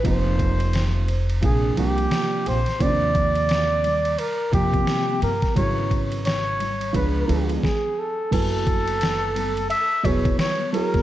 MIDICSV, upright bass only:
0, 0, Header, 1, 2, 480
1, 0, Start_track
1, 0, Tempo, 689655
1, 33, Time_signature, 4, 2, 24, 8
1, 7671, End_track
2, 0, Start_track
2, 0, Title_t, "Upright bass"
2, 0, Program_c, 0, 32
2, 34, Note_on_c, 0, 29, 84
2, 966, Note_off_c, 0, 29, 0
2, 997, Note_on_c, 0, 34, 89
2, 1186, Note_off_c, 0, 34, 0
2, 1236, Note_on_c, 0, 36, 84
2, 1425, Note_off_c, 0, 36, 0
2, 1717, Note_on_c, 0, 34, 85
2, 1830, Note_off_c, 0, 34, 0
2, 1954, Note_on_c, 0, 39, 74
2, 2886, Note_off_c, 0, 39, 0
2, 3153, Note_on_c, 0, 41, 82
2, 3344, Note_off_c, 0, 41, 0
2, 3636, Note_on_c, 0, 43, 89
2, 3749, Note_off_c, 0, 43, 0
2, 3874, Note_on_c, 0, 32, 78
2, 4806, Note_off_c, 0, 32, 0
2, 4835, Note_on_c, 0, 37, 90
2, 5025, Note_off_c, 0, 37, 0
2, 5076, Note_on_c, 0, 38, 90
2, 5266, Note_off_c, 0, 38, 0
2, 5795, Note_on_c, 0, 30, 88
2, 6726, Note_off_c, 0, 30, 0
2, 6994, Note_on_c, 0, 28, 91
2, 7184, Note_off_c, 0, 28, 0
2, 7619, Note_on_c, 0, 28, 86
2, 7671, Note_off_c, 0, 28, 0
2, 7671, End_track
0, 0, End_of_file